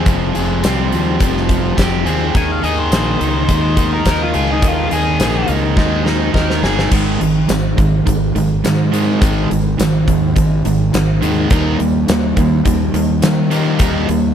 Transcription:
Already playing: overdriven electric guitar G#3 C4 G#4
0.06 fingered electric bass F1, overdriven electric guitar F3, kick, closed hi-hat
0.35 fingered electric bass F1, overdriven electric guitar G#4, closed hi-hat
0.63 fingered electric bass C2, overdriven electric guitar G3 C4, snare, closed hi-hat, tambourine
0.92 fingered electric bass D#2, overdriven electric guitar F3, closed hi-hat
1.20 fingered electric bass F1, overdriven electric guitar F3 C4, kick, closed hi-hat
1.37 snare
1.49 overdriven electric guitar F3, kick, closed hi-hat
1.77 fingered electric bass F1, overdriven electric guitar C4 G4, kick, snare, closed hi-hat, tambourine
2.06 fingered electric bass D#2, overdriven electric guitar C4 G#4, closed hi-hat
2.34 fingered electric bass D#2, overdriven electric guitar D#3, lead electric guitar G#5, kick, closed hi-hat
2.51 lead electric guitar F5
2.63 fingered electric bass D#2, overdriven electric guitar D#4 G#4, lead electric guitar D#5, closed hi-hat
2.79 lead electric guitar C5
2.91 fingered electric bass A#1, overdriven electric guitar A#3 G#4, snare, closed hi-hat, tambourine
3.21 fingered electric bass C#2, overdriven electric guitar D#3 D#4, closed hi-hat
3.49 fingered electric bass D#2, overdriven electric guitar G#3 D#4, kick, closed hi-hat
3.77 overdriven electric guitar D#3 D#4, kick, closed hi-hat
3.94 lead electric guitar A#4
4.05 fingered electric bass D#2, overdriven electric guitar D#4 A#4, kick, snare, closed hi-hat, tambourine
4.23 lead electric guitar F4
4.34 fingered electric bass C#2, overdriven electric guitar G#4, closed hi-hat
4.52 lead electric guitar D#4
4.62 fingered electric bass D#2, overdriven electric guitar D#3, kick, closed hi-hat
4.68 lead electric guitar F4
4.91 fingered electric bass D#2, overdriven electric guitar D#4 G#4, lead electric guitar G#4, closed hi-hat
5.20 fingered electric bass A#1, overdriven electric guitar A#3 G#4, snare, closed hi-hat, tambourine
5.48 fingered electric bass C#2, overdriven electric guitar D#3 D#4, closed hi-hat
5.77 fingered electric bass D#2, overdriven electric guitar G#3 D#4, kick, snare
6.05 overdriven electric guitar D#3 D#4, snare
6.34 fingered electric bass D#2, overdriven electric guitar D#4 A#4, kick, snare
6.50 snare
6.63 fingered electric bass G1, overdriven electric guitar G#4, snare
6.79 snare
6.92 fingered electric bass G#1, overdriven electric guitar G#2 D#3 G#3, kick, crash
7.21 fingered electric bass G#1, overdriven electric guitar G#2 D#3, closed hi-hat
7.49 fingered electric bass G#1, overdriven electric guitar G#2 D#3, snare, closed hi-hat, tambourine
7.78 fingered electric bass G#1, overdriven electric guitar G#2 D#3, kick, closed hi-hat
8.06 fingered electric bass G#1, overdriven electric guitar G#2 D#3, kick, closed hi-hat
8.35 fingered electric bass G#1, overdriven electric guitar G#2 D#3, closed hi-hat
8.64 overdriven electric guitar G#2 D#3, fingered electric bass G#2, snare, closed hi-hat, tambourine
8.93 overdriven electric guitar G#2 D#3 G#3, closed hi-hat
9.21 fingered electric bass G#1, overdriven electric guitar G#2 D#3 G#3, kick, closed hi-hat
9.51 fingered electric bass G#1, overdriven electric guitar G#2 D#3, closed hi-hat
9.79 fingered electric bass G#1, overdriven electric guitar G#2 D#3, snare, closed hi-hat, tambourine
10.08 fingered electric bass D#2, overdriven electric guitar G#2 D#3, kick, closed hi-hat
10.36 fingered electric bass G#1, overdriven electric guitar G#2 D#3, kick, closed hi-hat
10.65 fingered electric bass G#1, overdriven electric guitar G#2 D#3, closed hi-hat
10.93 fingered electric bass G#1, overdriven electric guitar G#2 D#3, snare, closed hi-hat, tambourine
11.22 fingered electric bass D#2, overdriven electric guitar G#2 D#3 G#3, closed hi-hat
11.50 fingered electric bass D#2, overdriven electric guitar D#3 G3 A#3 D#4, kick, closed hi-hat
11.79 fingered electric bass D#2, overdriven electric guitar D#3 G3 A#3, closed hi-hat
12.08 fingered electric bass D#2, overdriven electric guitar D#3 G3 A#3, snare, closed hi-hat, tambourine
12.36 fingered electric bass D#2, overdriven electric guitar D#3 G3 A#3, kick, closed hi-hat
12.65 fingered electric bass D#2, overdriven electric guitar D#3 G3 A#3, kick, closed hi-hat
12.94 fingered electric bass D#2, overdriven electric guitar D#3 G3 A#3, closed hi-hat
13.22 overdriven electric guitar D#3 G3 A#3, fingered electric bass D#3, snare, closed hi-hat, tambourine
13.51 overdriven electric guitar D#3 G3 A#3 D#4, closed hi-hat
13.79 fingered electric bass D#2, overdriven electric guitar D#3 G3 A#3 D#4, kick, closed hi-hat
14.09 fingered electric bass D#2, overdriven electric guitar D#3 G3 A#3, closed hi-hat

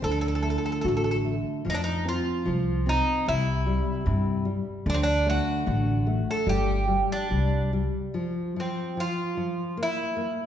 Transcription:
0.02 upright bass D2, nylon-string guitar D3, bouzouki A4
0.12 bouzouki A4
0.21 bouzouki A4
0.28 bouzouki A4
0.35 bouzouki A4
0.43 nylon-string guitar A3, bouzouki A4
0.50 bouzouki A4
0.58 bouzouki A4
0.66 bouzouki A4
0.72 bouzouki A4
0.81 upright bass A1, nylon-string guitar F#4, bouzouki A4
0.88 bouzouki A4
0.97 bouzouki A4
1.04 bouzouki A4
1.11 bouzouki A4
1.24 nylon-string guitar A3
1.65 upright bass F2, nylon-string guitar F3
1.70 bouzouki D#4
1.74 bouzouki D4
1.84 bouzouki D#4
2.05 nylon-string guitar C4, bouzouki F4
2.45 upright bass C2, nylon-string guitar F3
2.86 nylon-string guitar C4, bouzouki D#4
3.26 upright bass C2, nylon-string guitar C3, bouzouki E4
3.66 nylon-string guitar G3
4.06 upright bass G2, nylon-string guitar C3
4.45 nylon-string guitar G3
4.86 upright bass D2, nylon-string guitar D3, bouzouki D4
4.94 bouzouki C4
5.03 bouzouki D4
5.26 nylon-string guitar A3, bouzouki F#4
5.67 upright bass A1, nylon-string guitar D3
6.07 nylon-string guitar A3
6.31 bouzouki A4
6.47 upright bass G1, nylon-string guitar G3, bouzouki G4
6.88 nylon-string guitar G3
7.12 bouzouki D4
7.30 upright bass C2, nylon-string guitar G3
7.73 nylon-string guitar G3
8.14 nylon-string guitar F3
8.56 nylon-string guitar F3, bouzouki C4
8.97 nylon-string guitar F3, bouzouki F4
9.37 nylon-string guitar F3
9.77 nylon-string guitar A#3
9.83 bouzouki E4
10.17 nylon-string guitar A#3

